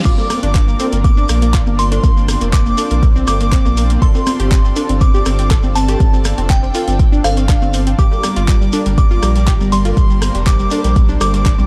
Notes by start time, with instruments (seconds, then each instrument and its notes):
0.05 sub bass G1, supersaw synth C4 D4 F4 A#4 D5, synth pluck F4, violin section D6, synth bell D6, kick, closed hi-hat, crash, shekere
0.18 synth pluck A#3, cowbell, shekere
0.30 synth pluck A#3, cross-stick, open hi-hat, high conga, shekere
0.43 sub bass G1, synth pluck D4, closed hi-hat, high woodblock, shekere
0.55 synth pluck A#3, kick, clap, closed hi-hat, shekere
0.68 synth pluck A#3, shekere
0.80 synth pluck C4, open hi-hat, cowbell, shekere
0.92 sub bass G1, synth pluck A#3, closed hi-hat, shekere
1.04 synth pluck A#3, synth bell D6, violin section D6, kick, closed hi-hat, high conga, shekere
1.17 synth pluck D4, shekere
1.29 sub bass A#1, synth pluck A#3, cross-stick, open hi-hat, high woodblock, shekere
1.42 synth pluck A#3, closed hi-hat, shekere
1.54 synth pluck F4, kick, clap, closed hi-hat, shekere
1.66 sub bass G1, synth pluck A#3, high conga, shekere
1.79 synth pluck A#3, violin section C6, synth bell C6, open hi-hat, shekere
1.91 synth pluck D4, closed hi-hat, cowbell, high woodblock, shekere
2.04 sub bass G1, synth pluck A#3, supersaw synth C5, kick, closed hi-hat, shekere
2.17 synth pluck A#3, shekere
2.28 cross-stick, open hi-hat, high conga, shekere
2.41 sub bass F1, synth pluck A#3, closed hi-hat, high woodblock, shekere
2.53 synth pluck A#3, synth bell D6, violin section D6, kick, clap, closed hi-hat, shekere
2.66 synth pluck A#3, shekere
2.77 synth pluck D4, open hi-hat, cowbell, shekere
2.90 sub bass A#1, synth pluck A#3, closed hi-hat, shekere
3.02 synth pluck A#3, kick, closed hi-hat, high conga, shekere
3.16 synth pluck C4, shekere
3.27 sub bass G1, synth pluck A#3, violin section D6, synth bell D6, cross-stick, open hi-hat, cowbell, shekere
3.40 synth pluck A#3, closed hi-hat, high woodblock, shekere
3.52 synth pluck C4, kick, clap, closed hi-hat, shekere
3.65 sub bass A#1, synth pluck A#3, high conga, high woodblock, shekere
3.77 synth pluck A#3, open hi-hat, shekere
3.90 synth pluck A#3, closed hi-hat, shekere
4.02 sub bass G1, supersaw synth D4 A4, synth pluck A4, violin section C6, synth bell C6, kick, closed hi-hat, shekere
4.15 synth pluck C4, cowbell, shekere
4.26 synth pluck C4, cross-stick, open hi-hat, high conga, shekere
4.39 sub bass G1, synth pluck G4, closed hi-hat, high woodblock, shekere
4.51 synth pluck C4, kick, clap, closed hi-hat, shekere
4.65 synth pluck C4, shekere
4.76 synth pluck D4, open hi-hat, cowbell, shekere
4.89 sub bass G1, synth pluck C4, closed hi-hat, shekere
5.01 synth pluck C4, violin section D6, synth bell D6, kick, closed hi-hat, high conga, shekere
5.14 synth pluck G4, shekere
5.26 sub bass G1, synth pluck C4, cross-stick, open hi-hat, high woodblock, shekere
5.39 synth pluck C4, closed hi-hat, shekere
5.51 synth pluck A4, kick, clap, closed hi-hat, shekere
5.63 sub bass G1, synth pluck C4, high conga, shekere
5.75 synth pluck C4, synth bell A5, violin section A5, open hi-hat, shekere
5.88 synth pluck G4, closed hi-hat, cowbell, high woodblock, shekere
6.00 sub bass G1, synth pluck C4, kick, closed hi-hat, shekere
6.13 synth pluck C4, shekere
6.25 cross-stick, open hi-hat, high conga, shekere
6.37 sub bass F1, synth pluck C4, closed hi-hat, high woodblock, shekere
6.50 synth pluck C4, synth bell G5, violin section G5, kick, clap, closed hi-hat, shekere
6.63 synth pluck C4, shekere
6.74 synth pluck F4, open hi-hat, cowbell, shekere
6.88 sub bass G1, synth pluck C4, closed hi-hat, shekere
6.99 synth pluck C4, kick, closed hi-hat, high conga, shekere
7.12 synth pluck D4, shekere
7.24 sub bass G1, synth pluck C4, synth bell F5, violin section F5, cross-stick, open hi-hat, cowbell, shekere
7.37 synth pluck C4, closed hi-hat, high woodblock, shekere
7.49 synth pluck D4, kick, clap, closed hi-hat, shekere
7.62 sub bass G1, synth pluck C4, high conga, high woodblock, shekere
7.74 synth pluck C4, open hi-hat, shekere
7.87 synth pluck C4, closed hi-hat, shekere
7.99 sub bass G1, supersaw synth G3 A#3 D4 A#4 D5, synth pluck G4, synth bell D6, violin section D6, kick, closed hi-hat, shekere
8.11 synth pluck G3, cowbell, shekere
8.23 synth pluck G3, cross-stick, open hi-hat, high conga, shekere
8.36 sub bass G1, synth pluck F4, closed hi-hat, high woodblock, shekere
8.48 synth pluck G3, kick, clap, closed hi-hat, shekere
8.61 synth pluck G3, shekere
8.73 synth pluck D4, open hi-hat, cowbell, shekere
8.86 sub bass G1, synth pluck G3, closed hi-hat, shekere
8.98 synth pluck G3, synth bell D6, violin section D6, kick, closed hi-hat, high conga, shekere
9.11 synth pluck F4, shekere
9.23 sub bass A#1, synth pluck G3, cross-stick, open hi-hat, high woodblock, shekere
9.36 synth pluck G3, closed hi-hat, shekere
9.47 synth pluck G4, kick, clap, closed hi-hat, shekere
9.60 sub bass G1, synth pluck G3, high conga, shekere
9.72 synth pluck G3, violin section C6, synth bell C6, open hi-hat, shekere
9.85 synth pluck F4, closed hi-hat, cowbell, high woodblock, shekere
9.97 sub bass G1, synth pluck G3, supersaw synth C5, kick, closed hi-hat, shekere
10.10 synth pluck G3, shekere
10.22 cross-stick, open hi-hat, high conga, shekere
10.35 sub bass F1, synth pluck G3, closed hi-hat, high woodblock, shekere
10.47 synth pluck G3, violin section D6, synth bell D6, kick, clap, closed hi-hat, shekere
10.59 synth pluck G3, shekere
10.71 synth pluck D4, open hi-hat, cowbell, shekere
10.84 sub bass A#1, synth pluck G3, closed hi-hat, shekere
10.96 synth pluck G3, kick, closed hi-hat, high conga, shekere
11.08 synth pluck D4, shekere
11.21 sub bass G1, synth pluck G3, violin section D6, synth bell D6, cross-stick, open hi-hat, cowbell, shekere
11.34 synth pluck G3, closed hi-hat, high woodblock, shekere
11.46 synth pluck D4, kick, clap, closed hi-hat, shekere
11.58 sub bass A#1, synth pluck G3, high conga, high woodblock, shekere